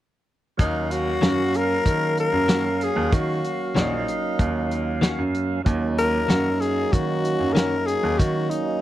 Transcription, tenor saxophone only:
0.60 0.93 D#4 medium
0.91 1.58 F#4 loud
1.56 2.18 A#4 loud
2.20 2.85 A#4 loud
2.84 3.15 G#4 medium
3.14 3.76 F#4 medium
3.77 4.99 D#4 medium
5.99 6.62 A#4 loud
6.61 6.94 G#4 loud
6.92 7.55 F#4 medium
7.53 7.88 A#4 loud
7.86 8.20 G#4 medium
8.18 8.51 F#4 medium
8.50 8.81 D#4 medium

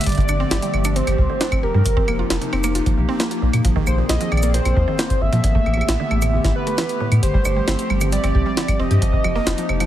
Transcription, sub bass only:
0.06 0.22 G1 loud
0.29 0.44 G1 loud
0.51 0.59 G1 loud
0.74 1.01 G1 medium
1.07 1.15 G1 loud
1.18 1.26 C2 loud
1.63 1.71 F1 loud
1.74 1.82 G2 medium
1.86 2.01 F1 loud
2.08 2.23 F1 loud
2.30 2.38 F1 loud
2.53 2.80 F1 medium
2.86 2.94 F1 loud
2.97 3.05 A#1 loud
3.42 3.50 A#1 loud
3.53 3.61 A#2 medium
3.65 3.80 A#1 loud
3.87 4.02 A#1 loud
4.09 4.17 A#1 loud
4.32 4.60 A#1 medium
4.65 4.73 A#1 loud
4.77 4.84 D#2 loud
5.21 5.29 G#1 medium
5.33 5.40 A#2 medium
5.44 5.59 A1 loud
5.66 5.81 A1 loud
5.89 5.96 A1 loud
6.11 6.39 A1 medium
6.45 6.52 A1 loud
7.12 7.19 A2 loud
7.23 7.38 G1 loud
7.45 7.60 G1 loud
7.68 7.75 G1 loud
7.90 8.18 G1 medium
8.24 8.31 G1 loud
8.35 8.42 C2 loud
8.80 8.87 F1 loud
8.91 8.98 G2 medium
9.02 9.17 F1 loud
9.24 9.39 F1 loud
9.47 9.54 F1 loud
9.69 9.86 F1 medium

